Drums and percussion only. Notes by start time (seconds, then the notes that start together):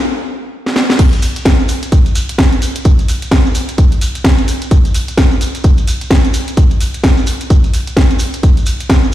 0.66 snare
0.76 snare
0.90 snare
0.99 kick, closed hi-hat, crash, maracas
1.13 closed hi-hat, maracas
1.22 open hi-hat, maracas
1.36 closed hi-hat, maracas
1.45 kick, snare, closed hi-hat, maracas
1.60 maracas
1.68 open hi-hat, maracas
1.83 closed hi-hat, maracas
1.92 kick, closed hi-hat, maracas
2.06 closed hi-hat, maracas
2.15 open hi-hat, maracas
2.29 closed hi-hat, maracas
2.38 kick, snare, closed hi-hat, maracas
2.52 closed hi-hat, maracas
2.62 open hi-hat, maracas
2.75 closed hi-hat, maracas
2.85 kick, closed hi-hat, maracas
2.99 closed hi-hat, maracas
3.08 open hi-hat, maracas
3.22 closed hi-hat, maracas
3.31 kick, snare, closed hi-hat, maracas
3.46 maracas
3.55 open hi-hat, maracas
3.69 closed hi-hat, maracas
3.78 kick, closed hi-hat, maracas
3.92 closed hi-hat, maracas
4.01 open hi-hat, maracas
4.15 closed hi-hat, maracas
4.24 kick, snare, closed hi-hat, maracas
4.38 closed hi-hat, maracas
4.48 open hi-hat, maracas
4.62 closed hi-hat, maracas
4.71 kick, closed hi-hat, maracas
4.85 closed hi-hat, maracas
4.94 open hi-hat, maracas
5.08 closed hi-hat, maracas
5.18 kick, snare, closed hi-hat, maracas
5.31 maracas
5.41 open hi-hat, maracas
5.55 closed hi-hat, maracas
5.64 kick, closed hi-hat, maracas
5.77 closed hi-hat, maracas
5.88 open hi-hat, maracas
6.01 closed hi-hat, maracas
6.11 kick, snare, closed hi-hat, maracas
6.25 closed hi-hat, maracas
6.34 open hi-hat, maracas
6.48 closed hi-hat, maracas
6.57 kick, closed hi-hat, maracas
6.71 closed hi-hat, maracas
6.81 open hi-hat, maracas
6.94 closed hi-hat, maracas
7.04 kick, snare, closed hi-hat, maracas
7.17 maracas
7.27 open hi-hat, maracas
7.41 closed hi-hat, maracas
7.50 kick, closed hi-hat, maracas
7.64 closed hi-hat, maracas
7.74 open hi-hat, maracas
7.87 closed hi-hat, maracas
7.97 kick, snare, closed hi-hat, maracas
8.10 closed hi-hat, maracas
8.19 open hi-hat, maracas
8.34 closed hi-hat, maracas
8.43 kick, closed hi-hat, maracas
8.57 closed hi-hat, maracas
8.66 open hi-hat, maracas
8.80 closed hi-hat, maracas
8.90 kick, snare, closed hi-hat, maracas
9.04 maracas